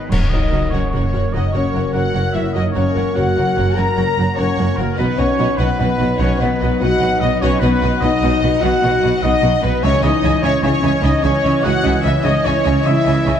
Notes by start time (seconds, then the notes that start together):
Already playing: G#2 D#3 B3 C#4 D#4 G#4 B4 C#5 D#5
0.10 F#1 F#2 F#3 A#3 C#4 F#4 A#4 C#5 F#5, concert bass drum, crash
0.21 C#3
0.30 F#1 F#2 D#4 F#4 A#4 C#5 D#5 F#5
0.42 A#4
0.51 F#1 F#2 F#4 A#4 C#5 F#5
0.63 F#5
0.70 F#1 F#2 F#4 A#4 C#5 F#5 A#5
0.74 C#4
0.90 F#1 F#2 F#4 A#4 C#5
0.95 C#4 C#5 F#5
1.03 C#4
1.12 F#1 F#2 C#3 F#4 A#4 C#5 F#5
1.24 C#4
1.33 F#1 F#2 D#4 F#4 A#4 C#5 D#5 F#5
1.44 C#3
1.52 F#1 F#2 F#4 A#4 C#5 F#5
1.57 C#4
1.65 A#4
1.73 F#1 F#2 F#4 A#4 C#5 F#5
1.93 F#1 F#2 F#4 A#4 C#5 F#5 A#5
2.14 F#1 F#2 F#4 A#4 C#5 F#5
2.25 C#4
2.32 F#1 F#2 C#3 E4 F#4 A#4 C#5 E5 F#5
2.44 C#4
2.53 F#1 F#2 D#4 F#4 A#4 C#5 D#5 F#5
2.66 C#3
2.72 F#2 C#4 F#4 A#4 C#5 F#5
2.76 F#1 C#5
2.85 A#4
2.95 F#1 F#2 F#4 A#4 C#5 F#5
3.06 F#5
3.14 F#1 F#2 F#4 A#4 C#5 F#5 A#5
3.26 C#5
3.36 F#1 F#2 F#4 A#4 C#5 F#5
3.46 C#4
3.56 F#1 F#2 C#3 F#4 A#4 C#5 F#5
3.76 F#1 F#2 F#4 A#4 C#5 F#5 A#5
3.86 C#3
3.96 F#1 F#2 F#4 A#4 C#5 F#5
4.06 A#4
4.17 F#1 F#2 F#4 A#4 C#5 F#5
4.27 F#5
4.36 F#1 F#2 C#4 F#4 A#4 C#5 F#5 A#5
4.56 F#1 F#2 F#4 A#4 C#5 F#5
4.76 F#1 F#2 C#3 A#3 F#4 A#4 C#5 F#5
4.89 C#4
4.95 B1 B2 F#3 B3 D#4 F#4 B4 D#5 F#5
5.09 F#3
5.17 B1 B2 C#4 F#4 B4 C#5 D#5 F#5
5.29 B4
5.38 B1 B2 F#4 B4 D#5 F#5
5.49 F#5
5.57 B1 B2 B3 B4 D#5 F#5 B5
5.61 F#4 B4
5.70 D#5
5.77 B1 B2 B3 F#4 B4 D#5 F#5
5.81 F#4
5.89 D#4
5.99 B1 B2 F#3 B4 D#5 F#5
6.03 F#4
6.10 D#4
6.18 B1 B2 C#4 B4 C#5 D#5 F#5
6.23 F#4
6.30 F#3
6.39 B1 B2 B3 F#4 B4 D#5 F#5
6.43 F#4 B4
6.60 B1 B2 F#4 B4 D#5 F#5
6.80 B1 B2 F#4 B4 D#5 F#5 B5
6.98 B1 B2 F#4 D#5 F#5
7.02 F#4 B4
7.12 B3
7.20 B1 B2 F#3 D#4 F#4 B4 D#5 F#5
7.40 B1 B2 C#4 F#4 B4 C#5 D#5 F#5
7.52 F#3
7.60 B1 B2 B3 F#4 B4 D#5 F#5
7.81 B1 B2 F#4 B4 D#5 F#5
7.92 F#5
8.00 B1 B2 D#4 F#4 B4 D#5 F#5 B5
8.21 B1 B2 F#4 B4 D#5 F#5
8.40 B1 B2 F#3 F#4 B4 D#5 F#5
8.60 B1 B2 F#4 B4 D#5 F#5
8.72 F#3
8.81 B1 B2 F#4 B4 D#5 F#5
9.00 B1 B2 F#4 D#5 F#5
9.04 B4
9.14 F#5
9.21 B1 B2 D#4 F#4 B4 D#5 F#5 B5
9.42 B1 B2 F#4 B4 D#5 F#5
9.62 B1 B2 F#3 B3 F#4 B4 D#5 F#5
9.82 C#2 C#3 E3 C#4 C#5 D#5 E5 G#5
9.94 G#3
10.02 C#2 C#3 D#4 E4 C#5 D#5 E5 G#5
10.23 C#2 C#3 C#5 D#5 E5 G#5
10.34 G#5
10.42 C#2 C#3 C#4 C#5 D#5 E5 G#5 D#6
10.62 C#2 C#3 E4 C#5 D#5 E5 G#5
10.66 C#4
10.73 C#4
10.83 C#2 C#3 G#3 C#5 D#5 E5 G#5
11.02 C#2 C#3 D#4 C#5 D#5 E5 G#5
11.14 G#3
11.22 C#2 C#3 C#4 E4 C#5 D#5 E5 G#5
11.43 C#2 C#3 C#5 D#5 E5 G#5
11.63 C#2 C#3 F#4 C#5 D#5 E5 F#5 G#5 D#6
11.76 C#5
11.82 C#2 C#3 E4 C#5 D#5 E5
11.87 G#5
12.02 C#2 C#3 G#3 E4 C#5 D#5 E5
12.06 E5 G#5
12.22 C#2 C#3 D#4 C#5 D#5 E5 G#5
12.36 G#3
12.44 C#2 C#3 C#4 E4 C#5 D#5 E5 G#5
12.63 C#2 C#3 C#5 D#5 E5 G#5
12.83 C#2 C#3 E4 C#5 D#5 E5 G#5 D#6
12.97 C#5
13.04 C#2 C#3 E4 C#5 D#5 E5 G#5
13.17 C#4
13.25 C#2 C#3 G#3 C#5 D#5 E5 G#5